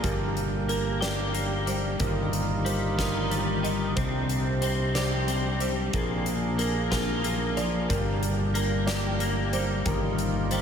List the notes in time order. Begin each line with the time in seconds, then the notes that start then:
Already playing: A#3 D4
0.03 G1 G2 G4 A#4, kick, closed hi-hat
0.37 closed hi-hat
0.69 A#3 A#4, closed hi-hat
1.00 G4 D5, snare, closed hi-hat
1.34 A#3, closed hi-hat
1.66 G3 C5, closed hi-hat
1.99 G1 D#2 G3 D#4 F4 A#4, kick, closed hi-hat
2.33 closed hi-hat
2.65 G3 C5, closed hi-hat
2.98 D#4 A#4, kick, snare, closed hi-hat
3.31 G3, closed hi-hat
3.63 D#3 D#5, closed hi-hat
3.95 C2 C3 C4 D4 G4 C5, kick, closed hi-hat
4.29 closed hi-hat
4.61 C4 C5, closed hi-hat
4.95 G4 D5, snare, closed hi-hat
5.28 C4, closed hi-hat
5.60 G3 C5, closed hi-hat
5.93 A#1 A#2 A#3 G#4, kick, closed hi-hat
6.26 closed hi-hat
6.58 A#3 A#4, closed hi-hat
6.91 F4 A#4, kick, snare, closed hi-hat
7.24 A#3, closed hi-hat
7.57 F3 D5, closed hi-hat
7.89 G1 G2 G4 A#4, kick, closed hi-hat
8.23 closed hi-hat
8.54 A#3 A#4, closed hi-hat
8.87 G4 D5, snare, closed hi-hat
9.20 A#3, closed hi-hat
9.52 G3 C5, closed hi-hat
9.85 G1 D#2 G3 D#4 F4 A#4, kick, closed hi-hat
10.19 closed hi-hat
10.50 G3 C5, closed hi-hat